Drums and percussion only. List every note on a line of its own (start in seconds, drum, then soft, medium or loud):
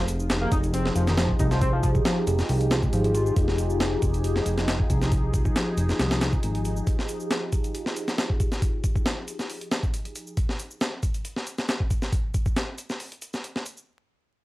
0.08 closed hi-hat medium
0.08 shaker medium
0.20 shaker soft
0.30 snare loud
0.30 closed hi-hat medium
0.30 shaker soft
0.52 kick medium
0.52 closed hi-hat medium
0.52 shaker medium
0.63 closed hi-hat soft
0.63 shaker soft
0.74 closed hi-hat medium
0.74 shaker soft
0.86 snare soft
0.96 closed hi-hat medium
0.96 shaker medium
1.07 snare medium
1.07 shaker soft
1.17 snare loud
1.17 closed hi-hat medium
1.17 shaker soft
1.29 kick medium
1.39 kick medium
1.39 closed hi-hat medium
1.39 shaker medium
1.51 snare soft
1.51 shaker soft
1.61 kick loud
1.61 closed hi-hat medium
1.61 shaker soft
1.83 kick medium
1.83 closed hi-hat medium
1.83 shaker medium
1.95 kick medium
1.95 shaker soft
2.05 snare loud
2.05 closed hi-hat medium
2.05 shaker soft
2.27 closed hi-hat medium
2.27 shaker medium
2.39 snare soft
2.39 shaker soft
2.49 open hi-hat medium
2.49 shaker soft
2.61 closed hi-hat soft
2.71 snare loud
2.71 closed hi-hat medium
2.71 shaker medium
2.82 kick medium
2.82 shaker soft
2.93 closed hi-hat medium
2.93 shaker soft
3.04 closed hi-hat soft
3.15 closed hi-hat medium
3.15 shaker medium
3.26 shaker soft
3.36 kick loud
3.36 closed hi-hat medium
3.36 shaker soft
3.48 snare soft
3.58 closed hi-hat medium
3.58 shaker medium
3.70 shaker soft
3.80 snare loud
3.80 closed hi-hat medium
3.80 shaker soft
4.02 kick medium
4.02 closed hi-hat medium
4.02 shaker medium
4.14 closed hi-hat soft
4.14 shaker soft
4.24 closed hi-hat medium
4.24 shaker soft
4.36 snare soft
4.46 closed hi-hat medium
4.46 shaker medium
4.58 snare soft
4.58 shaker soft
4.68 snare loud
4.68 closed hi-hat medium
4.68 shaker soft
4.80 kick medium
4.90 kick medium
4.90 closed hi-hat medium
4.90 shaker medium
5.02 snare soft
5.02 shaker soft
5.12 kick loud
5.12 closed hi-hat medium
5.12 shaker soft
5.34 kick medium
5.34 closed hi-hat medium
5.34 shaker medium
5.45 kick medium
5.45 shaker soft
5.56 snare loud
5.56 closed hi-hat medium
5.56 shaker soft
5.78 closed hi-hat medium
5.78 shaker medium
5.89 snare soft
5.89 shaker soft
5.99 snare loud
5.99 closed hi-hat medium
5.99 shaker soft
6.11 snare loud
6.11 closed hi-hat medium
6.21 snare loud
6.21 closed hi-hat medium
6.21 shaker medium
6.33 kick medium
6.33 shaker soft
6.43 closed hi-hat medium
6.43 shaker soft
6.55 closed hi-hat soft
6.65 closed hi-hat medium
6.65 shaker medium
6.76 shaker soft
6.87 kick loud
6.87 closed hi-hat medium
6.87 shaker soft
6.99 snare soft
7.09 closed hi-hat medium
7.09 shaker medium
7.20 shaker soft
7.31 snare loud
7.31 closed hi-hat medium
7.31 shaker soft
7.52 kick medium
7.52 closed hi-hat medium
7.52 shaker medium
7.64 closed hi-hat soft
7.64 shaker soft
7.74 closed hi-hat medium
7.74 shaker soft
7.86 snare soft
7.96 closed hi-hat medium
7.96 shaker medium
8.08 snare medium
8.08 shaker soft
8.18 snare loud
8.18 closed hi-hat medium
8.18 shaker soft
8.30 kick medium
8.40 kick medium
8.40 closed hi-hat medium
8.40 shaker medium
8.52 snare soft
8.52 shaker soft
8.62 kick loud
8.62 closed hi-hat medium
8.62 shaker soft
8.84 kick medium
8.84 closed hi-hat medium
8.84 shaker medium
8.96 kick medium
8.96 shaker soft
9.06 snare loud
9.06 closed hi-hat medium
9.06 shaker soft
9.28 closed hi-hat medium
9.28 shaker medium
9.39 snare soft
9.39 shaker soft
9.50 open hi-hat medium
9.50 shaker soft
9.61 closed hi-hat soft
9.71 snare loud
9.71 closed hi-hat medium
9.71 shaker medium
9.83 kick medium
9.83 shaker soft
9.94 closed hi-hat medium
9.94 shaker soft
10.05 closed hi-hat soft
10.15 closed hi-hat medium
10.15 shaker medium
10.27 shaker soft
10.37 kick loud
10.37 closed hi-hat medium
10.37 shaker soft
10.49 snare soft
10.59 closed hi-hat medium
10.59 shaker medium
10.71 shaker soft
10.81 snare loud
10.81 closed hi-hat medium
10.81 shaker soft
11.03 kick medium
11.03 closed hi-hat medium
11.03 shaker medium
11.14 closed hi-hat soft
11.14 shaker soft
11.25 closed hi-hat medium
11.25 shaker soft
11.36 snare soft
11.47 closed hi-hat medium
11.47 shaker medium
11.58 snare soft
11.58 shaker soft
11.68 snare loud
11.68 closed hi-hat medium
11.68 shaker soft
11.80 kick medium
11.90 kick medium
11.90 closed hi-hat medium
11.90 shaker medium
12.02 snare soft
12.02 shaker soft
12.12 kick loud
12.12 closed hi-hat medium
12.12 shaker soft
12.34 kick medium
12.34 closed hi-hat medium
12.34 shaker medium
12.46 kick medium
12.46 shaker soft
12.56 snare loud
12.56 closed hi-hat medium
12.56 shaker soft
12.78 closed hi-hat medium
12.78 shaker medium
12.90 snare soft
12.90 shaker soft
13.00 open hi-hat medium
13.00 shaker soft
13.12 closed hi-hat soft
13.22 closed hi-hat medium
13.22 shaker medium
13.33 snare soft
13.33 shaker soft
13.44 closed hi-hat medium
13.44 shaker soft
13.56 snare soft
13.66 closed hi-hat medium
13.66 shaker medium
13.77 shaker soft